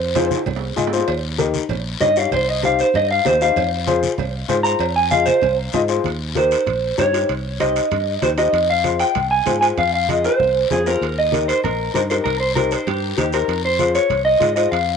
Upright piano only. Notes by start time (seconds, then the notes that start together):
0.15 F4 G#4 C5
0.76 F4 G#4 D#5
0.93 F4 G#4 C5
1.38 D#4 G4 A#4
2.00 D#4 G4 C#5
2.16 D#4 G4 C#5
2.63 D#4 G4 C5
3.25 D#4 G4 C5
3.42 D#4 G4 C5
3.87 F4 G#4 C5
4.49 F4 G#4 C5
4.64 F4 G#4 C5
5.11 F4 G#4 D#5
5.73 F4 G#4 D#5
5.88 F4 G#4 C5
6.35 D#4 G4 A#4
6.98 D#4 G4 C#5
7.13 D#4 G4 C5
7.60 D#4 G4 C5
8.22 D#4 G4 C5
8.37 D#4 G4 C5
8.83 F4 G#4 C5
9.46 F4 G#4 C5
9.61 F4 G#4 C5
10.08 F4 G#4 D#5
10.70 F4 G#4 C5
10.86 F4 G#4 C5
11.32 D#4 G4 A#4
11.94 D#4 G4 C5
12.10 D#4 G4 A#4
12.55 D#4 G4 C5
13.17 D#4 G4 C5
13.33 D#4 G4 C5
13.79 F4 G#4 C5
14.39 F4 G#4 D#5
14.56 F4 G#4 C5